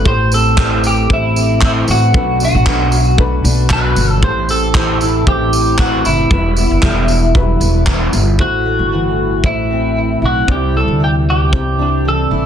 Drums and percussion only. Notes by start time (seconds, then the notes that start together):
0.06 kick
0.32 tambourine
0.58 kick, clap
0.84 tambourine
1.10 kick
1.36 tambourine
1.61 kick, clap
1.88 tambourine
2.14 kick
2.40 tambourine
2.66 kick, clap
2.92 tambourine
3.18 kick
3.45 tambourine
3.70 kick, clap
3.96 tambourine
4.23 kick
4.49 tambourine
4.74 kick, clap
5.01 tambourine
5.27 kick
5.53 tambourine
5.78 kick, clap
6.05 tambourine
6.31 kick
6.57 tambourine
6.82 kick, clap
7.08 tambourine
7.35 kick
7.61 tambourine
7.86 kick, clap
8.13 tambourine
8.39 kick
9.44 kick
10.48 kick
11.53 kick